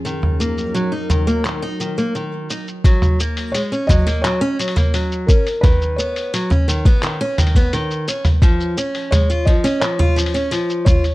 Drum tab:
HH |--------------------------------|o-----o-o---o-o-o---ooo-o-----o-|o-----o-o---o-o-o---ooo-o-----o-|o-----o-o---o-o-o---ooo-o-----o-|
SH |x---x-x-x---x-x-x---x-x-x---x-x-|x-x-x-x-x-x-x-x-x---x-x-x-x-x-x-|x-x-x-x-x-x-x-x-x---x-x-x-x-x-x-|x-x-x---x-x---x-x---x-x-x-x-x-x-|
CP |----------------x---------------|----------------x---------------|----------------x---------------|----------------x---------------|
T2 |--o---------o-------------------|--o---------o---------o---------|o---------o---------o---------o-|--------o---------o---------o---|
BD |--------------------------------|o-----------o---------------o---|o-------------o-------o---------|o-----------o---------------o---|